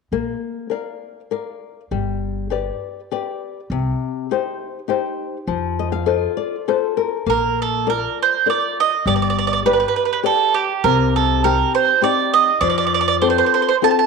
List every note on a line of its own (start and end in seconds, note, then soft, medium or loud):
0.12 0.32 A#1 soft
0.12 0.69 A#3 soft
0.70 1.19 A#4 soft
0.70 1.20 D5 soft
0.70 1.20 F5 soft
1.31 1.80 A#4 soft
1.31 1.80 D5 soft
1.31 1.80 F5 soft
1.91 2.69 G1 medium
1.91 2.50 G3 soft
2.50 2.99 G4 soft
2.50 2.99 B4 soft
2.50 3.00 D5 soft
3.11 3.59 G4 soft
3.11 3.60 B4 soft
3.11 3.59 D5 soft
3.70 3.90 C2 medium
3.70 4.29 C3 soft
4.31 4.78 D#4 soft
4.31 4.78 G4 soft
4.31 4.79 C5 soft
4.88 5.36 D#4 soft
4.88 5.36 G4 soft
4.88 5.37 C5 soft
5.47 6.25 F2 medium
5.47 6.06 F3 soft
5.79 5.92 D#5 medium
5.92 6.06 F5 soft
6.06 6.55 F4 soft
6.06 6.55 A4 soft
6.06 6.55 C5 soft
6.06 6.36 D#5 soft
6.37 6.65 D5 soft
6.68 7.16 F4 soft
6.68 6.97 A4 soft
6.68 7.16 C5 soft
6.97 7.25 A#4 medium
7.26 8.05 A#1 medium
7.26 7.85 A#3 medium
7.26 7.61 A#4 medium
7.62 7.87 A4 medium
7.87 8.35 F4 soft
7.87 8.35 A#4 soft
7.87 8.18 A#4 medium
7.87 8.35 D5 soft
8.22 8.49 C5 medium
8.46 8.94 F4 soft
8.46 8.95 A#4 soft
8.46 8.94 D5 soft
8.46 8.77 D5 medium
8.80 9.07 D#5 medium
9.06 9.83 G1 medium
9.06 9.64 G3 medium
9.06 9.14 D5 medium
9.16 9.21 D5 soft
9.22 9.29 D5 medium
9.30 9.37 D5 medium
9.39 9.45 D5 medium
9.47 9.52 D5 medium
9.53 9.59 D5 medium
9.65 10.13 G4 soft
9.65 9.72 B4 medium
9.65 10.14 B4 soft
9.65 10.14 D5 soft
9.73 9.79 B4 medium
9.80 9.87 B4 medium
9.88 9.95 B4 medium
9.96 10.03 B4 medium
10.05 10.12 B4 soft
10.13 10.19 B4 medium
10.23 10.72 G4 soft
10.23 10.54 A4 medium
10.23 10.72 B4 soft
10.23 10.72 D5 soft
10.54 10.85 G4 medium
10.84 11.61 C2 medium
10.84 11.42 C3 medium
10.84 11.16 A#4 medium
11.16 11.44 A4 medium
11.44 11.91 C4 soft
11.44 11.92 D#4 soft
11.44 11.92 G4 soft
11.44 11.73 A#4 medium
11.75 12.03 C5 medium
12.01 12.50 C4 soft
12.01 12.50 D#4 soft
12.01 12.50 G4 soft
12.01 12.32 D5 medium
12.34 12.60 D#5 medium
12.61 13.40 F2 medium
12.61 13.20 F3 medium
12.61 12.68 D5 medium
12.70 12.77 D5 medium
12.78 12.85 D5 medium
12.87 12.93 D5 medium
12.94 13.00 D5 medium
13.01 13.07 D5 medium
13.08 13.15 D5 medium
13.22 13.70 C4 soft
13.22 13.71 F4 soft
13.22 13.71 A4 soft
13.22 13.29 C5 medium
13.30 13.37 C5 medium
13.38 13.45 C5 medium
13.46 13.53 C5 soft
13.54 13.61 C5 medium
13.62 13.67 C5 medium
13.69 13.75 C5 medium
13.82 14.06 C4 soft
13.82 14.06 F4 soft
13.82 14.06 A4 soft
13.82 13.90 A5 medium
13.91 13.98 A5 medium
13.99 14.06 A5 medium